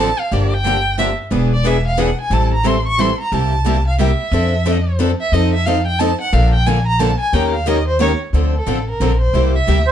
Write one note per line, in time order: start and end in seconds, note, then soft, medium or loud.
0.00 0.11 A1 medium
0.00 0.21 A5 loud
0.19 0.34 F5 medium
0.32 1.12 G1 medium
0.32 0.52 D3 medium
0.32 0.52 F3 medium
0.32 0.52 A#3 medium
0.32 0.52 D4 medium
0.32 0.52 G4 medium
0.32 0.55 D5 medium
0.53 0.98 G5 loud
0.64 0.75 D3 medium
0.64 0.75 F3 medium
0.64 0.75 A#3 loud
0.64 0.76 D4 medium
0.64 0.76 G4 medium
0.98 1.09 D3 medium
0.98 1.09 F3 medium
0.98 1.09 A#3 medium
0.98 1.09 D4 loud
0.98 1.09 G4 loud
0.98 1.11 E5 medium
1.30 2.11 E1 medium
1.30 1.51 E3 medium
1.30 1.52 B3 medium
1.30 1.52 D4 medium
1.30 1.52 G#4 medium
1.30 1.52 B4 medium
1.53 1.68 D5 medium
1.63 1.75 E3 medium
1.63 1.75 B3 medium
1.63 1.75 D4 loud
1.63 1.75 G#4 medium
1.63 1.76 B4 loud
1.63 1.86 E5 medium
1.87 2.02 F5 loud
1.97 2.09 E3 medium
1.97 2.09 B3 medium
1.97 2.09 D4 loud
1.97 2.09 G#4 loud
1.97 2.09 B4 loud
1.97 2.19 F#5 medium
2.21 2.35 G#5 medium
2.30 3.11 A1 medium
2.30 2.52 E3 medium
2.30 2.52 G3 medium
2.30 2.52 C4 medium
2.30 2.52 E4 medium
2.30 2.52 A4 medium
2.30 2.53 A5 medium
2.54 2.68 A#5 medium
2.63 2.75 E3 medium
2.63 2.75 G3 medium
2.63 2.76 C4 medium
2.63 2.76 E4 loud
2.63 2.76 A4 medium
2.63 2.86 C6 medium
2.87 3.02 C#6 loud
2.98 3.09 E3 medium
2.98 3.09 G3 loud
2.98 3.09 C4 loud
2.98 3.10 E4 loud
2.98 3.10 A4 loud
2.98 3.20 C6 loud
3.21 3.35 A#5 loud
3.32 4.12 C2 medium
3.32 3.52 C3 medium
3.32 3.52 G3 medium
3.32 3.53 A#3 medium
3.32 3.53 E4 medium
3.32 3.53 G4 medium
3.32 3.86 A5 medium
3.65 3.76 C3 medium
3.65 3.76 G3 loud
3.65 3.76 A#3 medium
3.65 3.77 E4 medium
3.65 3.77 G4 medium
3.88 3.99 F5 medium
3.98 4.09 C3 medium
3.98 4.10 G3 loud
3.98 4.10 A#3 loud
3.98 4.10 E4 loud
3.98 4.10 G4 loud
3.98 4.96 E5 medium
4.31 5.12 F2 medium
4.31 4.52 F3 medium
4.31 4.52 C4 medium
4.31 4.53 D4 medium
4.31 4.53 A4 medium
4.65 4.76 F3 medium
4.65 4.76 C4 medium
4.65 4.76 D4 loud
4.65 4.77 A4 loud
4.99 5.10 F3 medium
4.99 5.10 C4 loud
4.99 5.10 D4 loud
4.99 5.11 A4 loud
5.21 5.35 E5 medium
5.32 6.12 F2 medium
5.32 5.53 F3 medium
5.32 5.53 C4 medium
5.32 5.53 D#4 medium
5.32 5.53 A4 medium
5.32 5.53 D#5 medium
5.54 5.67 E5 medium
5.66 5.77 F3 medium
5.66 5.77 C4 loud
5.66 5.77 D#4 medium
5.66 5.77 A4 medium
5.66 5.86 F5 medium
5.86 6.01 G5 loud
5.99 6.10 F3 medium
5.99 6.10 C4 loud
5.99 6.11 D#4 loud
5.99 6.11 A4 loud
5.99 6.19 A5 loud
6.21 6.35 F#5 loud
6.33 7.13 A#1 loud
6.33 6.53 D3 medium
6.33 6.53 F3 medium
6.33 6.54 A#3 medium
6.33 6.54 D4 medium
6.33 6.54 A4 medium
6.33 6.53 F5 medium
6.54 6.68 G5 medium
6.66 6.77 D3 medium
6.66 6.77 F3 loud
6.66 6.77 A#3 loud
6.66 6.77 D4 loud
6.66 6.77 A4 medium
6.66 6.86 G#5 medium
6.87 7.01 A#5 loud
6.99 7.10 D3 loud
6.99 7.10 F3 loud
6.99 7.10 A#3 loud
6.99 7.10 D4 medium
6.99 7.10 A4 loud
6.99 7.19 A5 loud
7.20 7.35 G#5 loud
7.33 8.13 D#2 medium
7.33 7.53 D#3 medium
7.33 7.53 A#3 medium
7.33 7.54 C#4 medium
7.33 7.54 G4 medium
7.33 7.54 A#4 medium
7.33 7.53 G5 medium
7.54 7.69 F5 medium
7.67 7.77 D#3 loud
7.67 7.77 A#3 medium
7.67 7.78 C#4 medium
7.67 7.78 G4 loud
7.67 7.78 A#4 medium
7.67 7.87 D#5 medium
7.88 7.99 C5 loud
8.00 8.11 D#3 medium
8.00 8.11 A#3 loud
8.00 8.11 C#4 loud
8.00 8.11 G4 loud
8.00 8.11 A#4 loud
8.00 8.13 C#5 medium
8.33 8.60 D2 medium
8.33 8.54 D3 medium
8.33 8.54 F3 medium
8.33 8.54 C4 medium
8.33 8.54 D4 medium
8.33 8.54 A4 medium
8.56 8.87 A4 medium
8.66 8.95 A1 medium
8.66 8.77 D3 medium
8.66 8.77 F3 medium
8.66 8.77 C4 medium
8.66 8.78 D4 medium
8.66 8.78 A4 medium
8.90 9.18 A#4 medium
9.00 9.28 A#1 medium
9.00 9.11 D3 medium
9.00 9.11 F3 medium
9.00 9.11 C4 medium
9.00 9.11 D4 loud
9.00 9.11 A4 loud
9.21 9.51 C5 medium
9.33 9.60 C2 medium
9.33 9.54 C3 medium
9.33 9.54 G3 medium
9.33 9.54 A#3 medium
9.33 9.54 E4 medium
9.33 9.54 G4 medium
9.55 9.92 E5 medium
9.67 9.92 D2 medium
9.67 9.78 C3 medium
9.67 9.78 G3 medium
9.67 9.78 A#3 medium
9.67 9.78 E4 medium
9.67 9.78 G4 medium
9.87 9.92 C5 medium